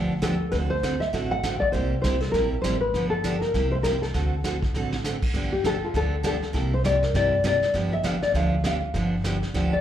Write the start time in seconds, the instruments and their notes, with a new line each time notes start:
Already playing: upright bass D2, steel-string acoustic guitar D3 F3 B3 D4 G4
0.22 steel-string acoustic guitar D3 F3 B3 D4 G4, nylon-string guitar A4, kick, snare, hi-hat pedal
0.52 upright bass D2, steel-string acoustic guitar D3 A3 C4 F#4 A4, nylon-string guitar B4, brush sweep, kick, snare
0.70 nylon-string guitar C5
0.83 steel-string acoustic guitar D3 A3 C4 F#4 A4, kick, snare, hi-hat pedal
1.00 nylon-string guitar E5, snare
1.13 upright bass A1, steel-string acoustic guitar D3 A3 C4 F#4 A4, brush sweep, kick, snare
1.31 nylon-string guitar F#5
1.43 steel-string acoustic guitar D3 A3 C4 F#4 A4, kick, snare, hi-hat pedal
1.60 nylon-string guitar D5, kick
1.72 upright bass C2, steel-string acoustic guitar C3 G3 A#3 E4 G4, nylon-string guitar C5, brush sweep, kick, snare
2.02 upright bass C2, steel-string acoustic guitar C3 G3 A#3 E4 G4, nylon-string guitar C5, kick, snare, hi-hat pedal
2.21 nylon-string guitar A4, snare
2.32 upright bass A#1, steel-string acoustic guitar C3 G3 A#3 E4 G4, nylon-string guitar A#4, brush sweep, kick, snare
2.62 upright bass A1, steel-string acoustic guitar C3 G3 A#3 E4 G4, nylon-string guitar C5, kick, snare, hi-hat pedal
2.81 nylon-string guitar B4
2.94 upright bass G1, steel-string acoustic guitar D3 F3 B3 D4 G4, brush sweep, kick, snare
3.10 nylon-string guitar A4
3.24 steel-string acoustic guitar D3 F3 B3 D4 G4, kick, snare, hi-hat pedal
3.41 nylon-string guitar A#4, snare
3.54 upright bass C2, steel-string acoustic guitar C3 G3 A#3 E4 G4, brush sweep, kick, snare
3.71 nylon-string guitar C5
3.83 steel-string acoustic guitar C3 G3 A#3 E4 G4, nylon-string guitar A#4, kick, snare, hi-hat pedal
4.02 nylon-string guitar A4, snare
4.14 upright bass D2, steel-string acoustic guitar D3 A3 C4 F#4 A4, brush sweep, kick, snare
4.44 steel-string acoustic guitar D3 A3 C4 F#4 A4, kick, snare, hi-hat pedal
4.62 kick, snare
4.74 upright bass A1, steel-string acoustic guitar D3 A3 C4 F#4 A4, snare
4.92 snare
5.04 steel-string acoustic guitar D3 A3 C4 F#4 A4, snare, hi-hat pedal
5.22 kick, crash
5.34 upright bass G1, steel-string acoustic guitar D3 F3 B3 D4 G4, brush sweep, kick, snare
5.52 nylon-string guitar G4
5.64 steel-string acoustic guitar D3 F3 B3 D4 G4, nylon-string guitar A4, kick, snare, hi-hat pedal
5.84 nylon-string guitar F4
5.94 upright bass D2, steel-string acoustic guitar D3 F3 B3 D4 G4, nylon-string guitar A4, brush sweep, kick, snare
6.23 steel-string acoustic guitar D3 F3 B3 D4 G4, nylon-string guitar A4, kick, snare, hi-hat pedal
6.43 snare
6.53 upright bass C2, steel-string acoustic guitar C3 G3 A#3 E4 G4, brush sweep, kick, snare
6.74 nylon-string guitar C5
6.84 steel-string acoustic guitar C3 G3 A#3 E4 G4, nylon-string guitar D5, kick, snare, hi-hat pedal
7.03 nylon-string guitar A#4, snare
7.14 upright bass G2, steel-string acoustic guitar C3 G3 A#3 E4 G4, nylon-string guitar D5, brush sweep, kick, snare
7.44 steel-string acoustic guitar C3 G3 A#3 E4 G4, nylon-string guitar D5, kick, snare, hi-hat pedal
7.62 snare
7.74 upright bass G1, steel-string acoustic guitar D3 F3 B3 D4 G4, brush sweep, kick, snare
7.93 nylon-string guitar E5
8.04 steel-string acoustic guitar D3 F3 B3 D4 G4, nylon-string guitar F5, kick, snare, hi-hat pedal
8.22 nylon-string guitar D5, snare
8.34 upright bass D2, steel-string acoustic guitar D3 F3 B3 D4 G4, nylon-string guitar F5, brush sweep, kick, snare
8.64 steel-string acoustic guitar D3 F3 B3 D4 G4, nylon-string guitar F5, kick, snare, hi-hat pedal
8.94 upright bass G1, steel-string acoustic guitar D3 F3 B3 D4 G4, brush sweep, kick, snare
9.24 steel-string acoustic guitar D3 F3 B3 D4 G4, kick, snare, hi-hat pedal
9.43 snare
9.54 upright bass D2, steel-string acoustic guitar D3 F3 B3 D4 G4, brush sweep, kick, snare
9.73 nylon-string guitar D5